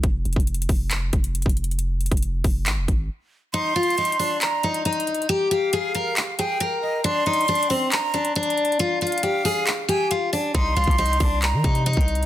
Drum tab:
HH |x-----------x---x---x---x---x---x---o-----------x-----------x-----x-----x---x---x---x---x---x---|x-----------x--x--x--x--x-----------o-----------x-----------x-----------------------------------|x-----------x---x---x---x---x---x---o-----------x-----------x-----x-----x---x---x---x---x---x---|x-----------x-----------x-----------x-----------x-----------x-----------x-----------------------|
CP |------------------------------------------------x-----------------------------------------------|------------------------------------------------x-----------------------------------------------|------------------------------------------------x-----------------------------------------------|------------------------------------------------x-----------------------------------------------|
BD |o-----------------o-----------------o-----------------------o-----------------o-----------------|------------------o-----------------o-----------------------o-----------------------------------|------------------------------------------------------------------------------------------------|------------------------------------------------------------------------------------------------|

HH |x-----------x---x---x---x---x---x---o-----------x-----------x-----x-----x---x---x---x---x---x---|x-----------x--x--x--x--x-----------o-----------x-----------x-----------x-----------o-----------|x-----------x---x---x---x---x---x---o-----------x-----------x-----x-----x---x---x---x---x---x---|
CP |------------------------------------------------x-----------------------------------------------|------------------------------------------------x-----------------------------------------------|------------------------------------------------x-----------------------------------------------|
BD |------------------------------------------------------------------------------------------------|------------------------------------------------------------------------------------------------|o-----------------o-----------------o-----------------------o-----------------o-----------------|